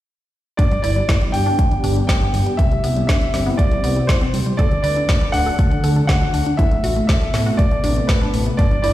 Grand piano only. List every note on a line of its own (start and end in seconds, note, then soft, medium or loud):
0.57 0.81 D5 loud
0.82 1.35 D5 loud
1.32 2.06 G5 loud
2.07 2.60 G5 loud
2.57 3.06 E5 loud
3.07 3.60 E5 loud
3.57 4.10 D5 loud
4.07 4.60 C5 loud
4.57 4.81 D5 loud
4.82 5.35 D5 loud
5.32 6.06 F#5 loud
6.07 6.60 F#5 loud
6.57 7.06 E5 loud
7.07 7.60 E5 loud
7.57 8.10 D5 loud
8.07 8.60 B4 medium
8.57 8.81 D5 loud
8.82 8.93 D5 loud